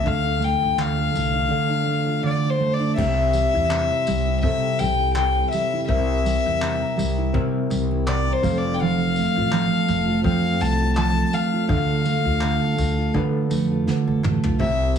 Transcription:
0.00 0.76 D3 medium
0.00 0.39 A3 medium
0.00 0.13 C4 medium
0.00 0.60 F4 medium
0.00 0.98 A4 medium
0.05 0.53 D2 loud
0.05 1.30 D4 medium
0.05 1.31 A4 medium
0.05 1.31 F5 medium
0.05 0.45 F5 loud
0.05 kick loud
0.23 1.32 D4 medium
0.40 1.12 A3 medium
0.40 tambourine medium
0.44 0.82 G5 loud
0.60 1.06 D2 medium
0.60 2.05 F4 medium
0.77 1.47 D3 medium
0.77 2.25 F5 loud
0.77 clap loud
0.98 2.42 A4 medium
1.14 1.45 C2 medium
1.14 1.85 A3 medium
1.14 tambourine medium
1.33 1.68 D4 medium
1.49 2.22 D3 medium
1.49 2.76 D4 medium
1.49 2.76 A4 medium
1.49 2.76 F5 medium
1.70 2.78 D4 medium
1.86 2.59 A3 medium
2.06 3.05 F4 medium
2.23 3.05 D3 medium
2.23 2.51 D5 medium
2.43 3.05 A4 medium
2.50 2.75 C5 medium
2.60 3.05 A3 medium
2.73 2.96 D5 medium
2.79 3.05 D4 medium
2.96 3.44 C2 loud
2.96 3.69 C3 medium
2.96 4.22 C4 medium
2.96 4.22 G4 medium
2.96 4.39 E5 loud
2.96 4.22 E5 medium
2.96 kick loud
2.96 crash loud
3.33 4.07 G3 medium
3.33 tambourine medium
3.54 3.85 E2 medium
3.54 4.27 E4 medium
3.70 4.43 C3 medium
3.70 clap loud
3.91 5.36 C5 medium
4.07 4.45 C2 medium
4.07 4.80 G3 medium
4.07 tambourine medium
4.27 4.99 E4 medium
4.41 4.81 C3 loud
4.41 5.16 C3 medium
4.41 5.67 C4 medium
4.41 5.68 G4 medium
4.41 5.68 A4 medium
4.41 4.80 E5 medium
4.41 kick loud
4.78 5.39 C2 medium
4.78 5.53 G3 medium
4.78 5.14 G5 loud
4.78 tambourine medium
4.99 5.73 E4 medium
5.14 5.88 C3 medium
5.14 5.49 G5 loud
5.14 clap loud
5.37 6.81 C5 medium
5.51 6.25 G3 medium
5.51 5.86 E5 medium
5.51 tambourine medium
5.73 6.45 E4 medium
5.88 6.35 C2 loud
5.88 6.60 C3 medium
5.88 7.12 C4 medium
5.88 7.13 A#4 medium
5.88 7.30 E5 loud
5.88 7.13 E5 medium
5.88 kick loud
6.25 6.96 G3 medium
6.25 tambourine medium
6.46 6.75 E2 medium
6.46 7.17 E4 medium
6.61 7.34 C3 medium
6.61 clap loud
6.81 8.26 A#4 medium
6.97 7.28 C2 medium
6.97 7.69 G3 medium
6.97 tambourine medium
7.18 7.90 E4 medium
7.33 7.64 C3 loud
7.33 8.06 C3 medium
7.33 8.41 C4 medium
7.33 8.43 A#4 medium
7.33 8.43 E5 loud
7.33 kick loud
7.70 8.30 C2 medium
7.70 8.51 G3 medium
7.70 tambourine medium
7.91 8.51 E4 medium
8.07 8.51 C3 medium
8.07 8.34 D5 medium
8.07 clap loud
8.27 8.51 A#4 medium
8.33 8.59 C5 medium
8.43 9.19 F1 medium
8.43 8.81 F3 medium
8.43 9.67 C4 medium
8.43 8.50 G4 medium
8.43 9.68 F5 medium
8.43 kick loud
8.43 tambourine medium
8.50 9.70 A4 medium
8.57 8.76 D5 medium
8.64 9.37 F4 medium
8.74 8.82 G5 medium
8.80 9.51 F3 medium
8.80 10.24 F5 loud
9.16 9.88 A3 medium
9.16 tambourine medium
9.36 9.66 A1 medium
9.36 10.08 F4 medium
9.52 10.23 F3 medium
9.52 clap loud
9.73 11.16 A4 medium
9.88 10.18 F1 medium
9.88 10.60 A3 medium
9.88 tambourine medium
10.08 10.80 F4 medium
10.24 10.54 F2 loud
10.24 10.96 F3 medium
10.24 11.48 C4 medium
10.24 11.49 A4 medium
10.24 10.63 F5 loud
10.24 11.49 G5 medium
10.24 kick loud
10.60 11.20 C2 loud
10.60 11.32 A3 medium
10.60 10.96 A5 loud
10.60 tambourine medium
10.80 11.53 F4 medium
10.97 11.69 F3 medium
10.97 11.35 A5 loud
10.97 clap loud
11.16 12.61 A4 medium
11.33 12.05 A3 medium
11.33 11.70 F5 medium
11.33 tambourine medium
11.53 12.25 F4 medium
11.68 12.16 D2 loud
11.68 12.40 D3 medium
11.68 12.93 D4 medium
11.68 12.93 A4 medium
11.68 11.77 E5 medium
11.68 13.11 F5 loud
11.68 kick loud
11.77 12.97 F5 medium
12.05 12.76 A3 medium
12.05 tambourine medium
12.25 12.55 D2 medium
12.25 12.96 F4 medium
12.41 13.13 D3 medium
12.41 clap loud
12.62 14.06 A4 medium
12.78 13.08 D2 medium
12.78 13.49 A3 medium
12.78 tambourine medium
12.98 13.70 F4 medium
13.14 13.86 D3 medium
13.14 13.44 D3 loud
13.14 14.39 D4 medium
13.14 14.39 A4 medium
13.14 14.39 B4 medium
13.14 kick loud
13.50 13.81 F2 medium
13.50 14.23 A3 medium
13.50 tambourine medium
13.71 14.43 F4 medium
13.87 14.68 D3 medium
13.87 snare medium
14.07 14.21 F1 medium
14.07 14.68 A4 medium
14.23 14.40 A1 medium
14.23 14.68 A3 medium
14.23 mid tom medium
14.43 14.57 B1 medium
14.43 14.68 F4 medium
14.43 floor tom loud
14.59 14.98 C2 loud
14.59 14.98 C3 medium
14.59 14.98 C4 medium
14.59 14.98 G4 medium
14.59 14.94 E5 medium
14.59 14.98 E5 medium
14.59 kick loud

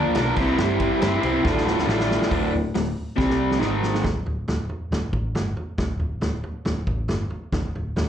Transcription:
0.00 0.16 A#2 loud
0.00 0.16 F3 medium
0.00 0.14 A#3 medium
0.00 0.15 D4 medium
0.00 0.16 F4 medium
0.00 0.17 A#4 medium
0.15 0.30 B1 loud
0.15 0.35 A#3 medium
0.15 0.36 D4 medium
0.15 0.36 F4 medium
0.15 0.36 A#4 loud
0.15 snare loud
0.15 ride loud
0.36 0.52 C2 medium
0.36 0.56 C3 medium
0.36 0.57 G3 medium
0.36 0.58 C4 medium
0.36 0.58 E4 medium
0.36 0.59 G4 medium
0.36 0.59 C5 medium
0.36 kick loud
0.36 crash loud
0.58 0.89 G2 loud
0.58 1.01 C3 loud
0.58 1.01 G3 loud
0.58 0.81 C4 loud
0.58 0.81 E4 loud
0.58 0.79 G4 loud
0.58 0.78 C5 loud
0.58 snare loud
0.79 0.98 C4 medium
0.79 1.00 E4 medium
0.79 1.01 G4 medium
0.79 1.02 C5 medium
0.79 kick medium
0.79 ride medium
1.00 1.17 G2 loud
1.00 1.22 C4 medium
1.00 1.22 E4 medium
1.00 1.21 G4 medium
1.00 1.19 C5 medium
1.00 snare loud
1.00 ride loud
1.20 1.38 C2 medium
1.20 1.43 C4 medium
1.20 1.43 E4 medium
1.20 1.43 G4 medium
1.20 1.42 C5 medium
1.20 ride medium
1.43 1.75 D1 loud
1.43 1.87 D2 loud
1.43 1.85 A2 loud
1.43 1.68 D3 loud
1.43 1.66 A3 loud
1.43 1.64 F4 loud
1.43 kick loud
1.43 snare medium
1.57 snare medium
1.66 1.86 D3 medium
1.66 1.87 A3 medium
1.66 1.88 F4 medium
1.66 snare medium
1.78 snare medium
1.86 2.17 A1 loud
1.86 2.29 A2 medium
1.86 2.29 D3 medium
1.86 2.30 A3 medium
1.86 2.30 F4 medium
1.86 snare loud
2.00 snare medium
2.11 snare loud
2.22 snare loud
2.30 2.51 D1 medium
2.30 2.51 D2 medium
2.30 2.52 A2 loud
2.30 2.52 D3 loud
2.30 kick loud
2.30 open hi-hat medium
2.53 2.73 D1 medium
2.53 2.70 D2 medium
2.53 2.70 A2 medium
2.74 2.94 D1 medium
2.74 2.91 D2 medium
2.74 2.91 A2 medium
2.74 snare loud
2.74 open hi-hat medium
3.16 3.58 C2 loud
3.16 3.59 C3 loud
3.16 3.59 G3 loud
3.16 3.60 C4 loud
3.16 kick loud
3.16 snare medium
3.30 snare medium
3.51 snare medium
3.59 4.01 G#1 loud
3.59 4.03 G#2 medium
3.59 4.03 D#3 loud
3.59 4.03 G#3 medium
3.59 snare medium
3.83 snare medium
3.94 snare medium
4.04 4.25 D1 medium
4.04 kick medium
4.04 snare loud
4.04 floor tom medium
4.26 4.46 D1 medium
4.26 floor tom medium
4.48 4.68 D1 medium
4.48 snare loud
4.48 floor tom medium
4.69 floor tom medium
4.91 5.11 D1 medium
4.91 snare loud
4.91 floor tom medium
5.13 5.33 A1 medium
5.13 kick loud
5.13 floor tom medium
5.35 5.55 G1 medium
5.35 snare loud
5.35 floor tom medium
5.57 muted picked electric bass stroke soft
5.57 floor tom medium
5.78 5.98 D1 medium
5.78 kick loud
5.78 snare loud
5.78 floor tom medium
5.99 6.20 D1 medium
5.99 floor tom medium
6.21 6.42 D1 medium
6.21 snare loud
6.21 floor tom medium
6.43 floor tom medium
6.65 6.86 D1 medium
6.65 snare loud
6.65 floor tom medium
6.87 7.08 A1 medium
6.87 kick medium
6.87 floor tom medium
7.08 7.29 G1 medium
7.08 snare loud
7.08 floor tom medium
7.30 muted picked electric bass stroke soft
7.30 floor tom medium
7.52 7.73 D1 medium
7.52 kick loud
7.52 snare loud
7.52 floor tom medium
7.75 7.95 D1 medium
7.75 floor tom medium
7.96 8.09 D1 medium
7.96 snare loud
7.96 floor tom medium

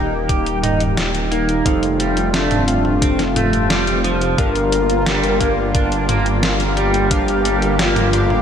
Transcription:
0.00 1.62 D#1 medium
0.00 1.63 D#3 medium
0.00 1.63 G3 medium
0.00 1.63 A#3 medium
0.00 0.12 D#4 medium
0.00 1.61 D#4 medium
0.00 0.15 G4 loud
0.00 1.61 G4 medium
0.00 1.63 G4 medium
0.00 1.61 A#4 medium
0.00 1.61 G5 medium
0.29 0.58 G4 loud
0.29 kick loud
0.29 closed hi-hat loud
0.46 closed hi-hat soft
0.63 0.80 D#4 medium
0.63 closed hi-hat medium
0.63 mid tom medium
0.80 closed hi-hat soft
0.97 snare loud
0.97 closed hi-hat medium
1.15 closed hi-hat soft
1.31 1.64 A#3 loud
1.31 2.20 D#4 loud
1.31 closed hi-hat soft
1.49 closed hi-hat soft
1.65 4.35 F1 medium
1.65 4.36 C3 medium
1.65 1.83 F3 medium
1.65 8.42 G3 medium
1.65 4.36 A3 medium
1.65 2.64 C4 medium
1.65 4.36 F4 medium
1.65 2.64 G4 medium
1.65 2.64 A4 medium
1.65 2.64 F5 loud
1.65 kick loud
1.65 closed hi-hat medium
1.83 closed hi-hat soft
2.00 2.28 G3 medium
2.00 closed hi-hat medium
2.17 closed hi-hat soft
2.34 2.62 A3 medium
2.34 3.23 D4 loud
2.34 snare loud
2.34 closed hi-hat medium
2.51 closed hi-hat soft
2.51 mid tom medium
2.68 4.34 C4 medium
2.68 4.34 G4 medium
2.68 4.34 A4 medium
2.68 4.34 F5 loud
2.68 closed hi-hat medium
2.85 mid tom medium
3.02 3.19 C4 medium
3.02 kick loud
3.02 closed hi-hat loud
3.19 snare soft
3.19 closed hi-hat soft
3.36 3.68 A3 medium
3.36 closed hi-hat medium
3.36 mid tom medium
3.53 closed hi-hat soft
3.70 3.99 G3 loud
3.70 snare loud
3.70 closed hi-hat loud
3.87 closed hi-hat soft
4.04 4.37 F3 loud
4.04 closed hi-hat soft
4.21 closed hi-hat soft
4.38 8.42 G1 medium
4.38 8.42 D3 medium
4.38 4.55 F3 loud
4.38 8.42 A#3 medium
4.38 5.37 D4 medium
4.38 7.08 F4 medium
4.38 5.37 G4 medium
4.38 5.61 A#4 loud
4.38 5.37 A#4 medium
4.38 5.37 F5 loud
4.38 kick loud
4.38 closed hi-hat medium
4.55 closed hi-hat soft
4.72 closed hi-hat medium
4.90 closed hi-hat soft
5.06 5.39 G3 loud
5.06 snare loud
5.06 closed hi-hat medium
5.24 closed hi-hat soft
5.41 5.58 A#3 medium
5.41 7.07 D4 medium
5.41 7.07 G4 medium
5.41 7.07 A#4 medium
5.41 7.07 F5 medium
5.41 kick medium
5.41 closed hi-hat medium
5.75 6.03 D4 loud
5.75 kick loud
5.75 closed hi-hat loud
5.92 closed hi-hat soft
6.09 6.26 A#3 loud
6.09 closed hi-hat medium
6.09 mid tom medium
6.26 closed hi-hat soft
6.43 snare loud
6.43 closed hi-hat loud
6.60 closed hi-hat soft
6.77 7.09 G3 loud
6.77 7.66 G4 loud
6.77 closed hi-hat soft
6.94 closed hi-hat soft
7.11 7.28 F3 medium
7.11 8.09 D4 medium
7.11 8.09 G4 medium
7.11 8.42 G4 medium
7.11 8.09 A#4 medium
7.11 8.09 F5 loud
7.11 kick loud
7.11 closed hi-hat medium
7.28 closed hi-hat soft
7.45 7.74 G3 medium
7.45 closed hi-hat medium
7.62 closed hi-hat soft
7.79 8.08 A#3 medium
7.79 8.42 F4 loud
7.79 snare loud
7.79 closed hi-hat medium
7.96 closed hi-hat soft
7.96 mid tom loud
8.13 8.42 D4 medium
8.13 8.42 G4 medium
8.13 8.42 A#4 medium
8.13 8.42 F5 medium
8.13 closed hi-hat medium
8.30 mid tom medium

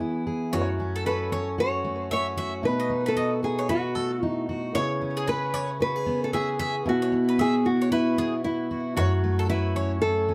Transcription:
0.00 0.56 E3 medium
0.00 0.60 B3 medium
0.00 0.79 E4 medium
0.00 0.23 G#4 medium
0.00 0.25 G#4 medium
0.27 0.59 G#4 medium
0.51 2.64 F#2 medium
0.51 2.59 A3 medium
0.51 2.60 E4 soft
0.51 1.08 F#4 medium
0.51 2.60 F#4 soft
0.51 0.68 C#5 medium
0.55 0.62 B4 soft
0.61 2.64 C#5 medium
0.80 1.31 C#4 soft
0.96 1.06 A4 medium
1.06 1.58 F#4 medium
1.06 1.55 A4 medium
1.06 1.31 B4 medium
1.32 2.10 C#4 soft
1.32 1.47 C#5 medium
1.58 2.37 F#4 medium
1.58 2.08 C#5 medium
1.84 2.92 A3 medium
2.11 2.70 C#4 medium
2.11 2.65 C#5 medium
2.11 2.26 E5 medium
2.37 3.16 F#4 medium
2.37 2.53 E5 medium
2.62 4.74 B2 medium
2.62 4.70 A3 medium
2.62 4.71 D#4 soft
2.62 4.71 F#4 soft
2.62 3.08 B4 medium
2.62 4.72 B4 medium
2.80 2.90 D#5 medium
2.89 3.42 D#4 soft
3.06 3.44 A4 medium
3.06 3.16 B4 medium
3.16 3.68 F#4 medium
3.16 3.32 D#5 medium
3.43 4.21 D#4 soft
3.43 3.71 G#4 medium
3.59 3.69 C#5 medium
3.69 4.48 F#4 medium
3.69 4.25 F#4 medium
3.69 3.95 B4 medium
3.95 4.81 A3 medium
3.95 4.11 A4 medium
4.23 4.82 D#4 medium
4.23 4.45 E4 medium
4.49 4.82 F#4 medium
4.73 6.85 C#3 medium
4.73 6.81 B3 medium
4.73 6.82 E4 medium
4.73 6.82 G#4 medium
4.73 4.90 C#5 medium
4.73 5.29 C#5 medium
4.77 6.83 C#5 medium
5.01 5.52 C#4 medium
5.17 5.27 G#4 medium
5.28 5.80 G#4 medium
5.28 5.54 B4 medium
5.28 5.78 B4 medium
5.54 6.32 C#4 medium
5.54 5.69 C#5 medium
5.80 5.96 F#4 medium
5.80 6.24 B4 medium
5.96 6.58 G#4 medium
6.06 8.17 B3 medium
6.24 6.34 A4 medium
6.33 6.92 C#4 medium
6.33 6.83 G#4 medium
6.33 6.48 E5 medium
6.59 6.92 G#4 medium
6.59 6.75 E5 medium
6.83 8.97 B2 medium
6.83 8.92 B3 medium
6.83 8.93 E4 medium
6.83 8.93 F#4 soft
6.88 7.42 F#4 medium
6.88 8.94 E5 medium
7.02 7.12 C#5 medium
7.12 7.65 E4 soft
7.29 7.38 B4 medium
7.38 7.91 F#4 medium
7.38 7.67 G#4 medium
7.38 7.54 E5 medium
7.65 8.44 E4 medium
7.65 7.92 F#4 medium
7.82 7.91 C#5 medium
7.91 8.43 E4 medium
7.91 8.70 F#4 medium
7.91 8.17 B4 medium
8.18 9.03 B3 soft
8.18 8.33 G#4 medium
8.44 8.96 E4 medium
8.44 9.52 E4 medium
8.71 9.49 F#4 medium
8.94 10.34 F#2 medium
8.94 10.34 A3 medium
8.94 10.34 E4 soft
8.94 9.49 F#4 medium
8.94 10.34 F#4 medium
8.94 9.12 C#5 medium
8.99 10.34 C#5 medium
9.24 10.34 A3 medium
9.39 9.49 A4 medium
9.49 10.04 E4 medium
9.49 10.01 F#4 medium
9.49 9.75 B4 medium
9.76 10.27 C#4 soft
9.76 9.91 C#5 medium
10.01 10.34 F#4 medium
10.01 10.34 A4 medium
10.29 10.34 C#4 medium

